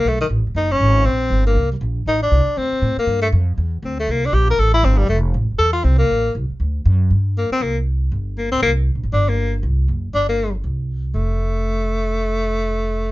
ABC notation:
X:1
M:4/4
L:1/8
Q:"Swing" 1/4=238
K:F
V:1 name="Tenor saxophone"
A, ^D, z2 ^D _D3 | C3 B,2 G, z2 | _E D3 C3 B,- | B, A, z4 C A, |
B, D G B A E C G, | A, z3 A F C B,- | B,2 z6 | z2 B, C B, z3 |
z2 B, C B, z3 | D B,2 z4 z | D B,2 z4 z | A,8- |
A,8 |]
V:2 name="Upright bass" clef=bass
=B,,,2 (3A,,, ^F,,, ^D,,, F,,,2 _A,,,2 | B,,,2 G,,,2 C,,2 B,,,2 | A,,,2 C,, z D,, z A,, z | G,,2 F,,2 E,,2 D,,2 |
C,,2 B,,,2 A,,,2 G,,,2 | F,,,2 (3A,,, F,,, E,,, E,,2 C,,2 | A,,,2 C,, z D,,2 ^F,,2 | G,,3 z C,,4 |
G,,,3 _D,, C,,2- (3C,, B,,, _A,,, | G,,,4 C,,2 _G,,,2 | G,,,4 C,,4 | F,,,8- |
F,,,8 |]